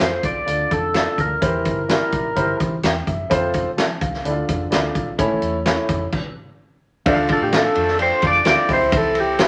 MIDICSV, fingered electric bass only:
0, 0, Header, 1, 2, 480
1, 0, Start_track
1, 0, Key_signature, -1, "minor"
1, 0, Tempo, 469484
1, 1453, Time_signature, 4, 2, 24, 8
1, 9691, End_track
2, 0, Start_track
2, 0, Title_t, "Fingered electric bass"
2, 0, Program_c, 0, 33
2, 0, Note_on_c, 0, 41, 90
2, 176, Note_off_c, 0, 41, 0
2, 238, Note_on_c, 0, 36, 85
2, 416, Note_off_c, 0, 36, 0
2, 481, Note_on_c, 0, 38, 99
2, 659, Note_off_c, 0, 38, 0
2, 728, Note_on_c, 0, 41, 89
2, 1080, Note_off_c, 0, 41, 0
2, 1207, Note_on_c, 0, 38, 83
2, 1384, Note_off_c, 0, 38, 0
2, 1451, Note_on_c, 0, 40, 93
2, 1694, Note_on_c, 0, 31, 83
2, 1709, Note_off_c, 0, 40, 0
2, 2046, Note_off_c, 0, 31, 0
2, 2173, Note_on_c, 0, 34, 81
2, 2350, Note_off_c, 0, 34, 0
2, 2420, Note_on_c, 0, 31, 93
2, 2595, Note_off_c, 0, 31, 0
2, 2663, Note_on_c, 0, 52, 82
2, 2837, Note_off_c, 0, 52, 0
2, 2890, Note_on_c, 0, 40, 90
2, 3069, Note_off_c, 0, 40, 0
2, 3141, Note_on_c, 0, 42, 90
2, 3317, Note_off_c, 0, 42, 0
2, 3383, Note_on_c, 0, 41, 103
2, 3733, Note_off_c, 0, 41, 0
2, 3857, Note_on_c, 0, 53, 93
2, 4035, Note_off_c, 0, 53, 0
2, 4104, Note_on_c, 0, 36, 95
2, 4280, Note_off_c, 0, 36, 0
2, 4340, Note_on_c, 0, 38, 99
2, 4516, Note_off_c, 0, 38, 0
2, 4590, Note_on_c, 0, 41, 83
2, 4763, Note_off_c, 0, 41, 0
2, 4822, Note_on_c, 0, 38, 85
2, 4998, Note_off_c, 0, 38, 0
2, 5060, Note_on_c, 0, 34, 77
2, 5237, Note_off_c, 0, 34, 0
2, 5306, Note_on_c, 0, 33, 103
2, 5480, Note_off_c, 0, 33, 0
2, 5541, Note_on_c, 0, 40, 83
2, 5891, Note_off_c, 0, 40, 0
2, 6021, Note_on_c, 0, 41, 92
2, 6196, Note_off_c, 0, 41, 0
2, 7219, Note_on_c, 0, 38, 103
2, 7479, Note_off_c, 0, 38, 0
2, 7581, Note_on_c, 0, 45, 90
2, 7840, Note_off_c, 0, 45, 0
2, 7937, Note_on_c, 0, 41, 94
2, 8283, Note_off_c, 0, 41, 0
2, 8412, Note_on_c, 0, 41, 93
2, 8585, Note_off_c, 0, 41, 0
2, 8647, Note_on_c, 0, 38, 94
2, 8735, Note_off_c, 0, 38, 0
2, 8884, Note_on_c, 0, 36, 93
2, 8972, Note_off_c, 0, 36, 0
2, 9010, Note_on_c, 0, 37, 85
2, 9096, Note_off_c, 0, 37, 0
2, 9122, Note_on_c, 0, 36, 113
2, 9691, Note_off_c, 0, 36, 0
2, 9691, End_track
0, 0, End_of_file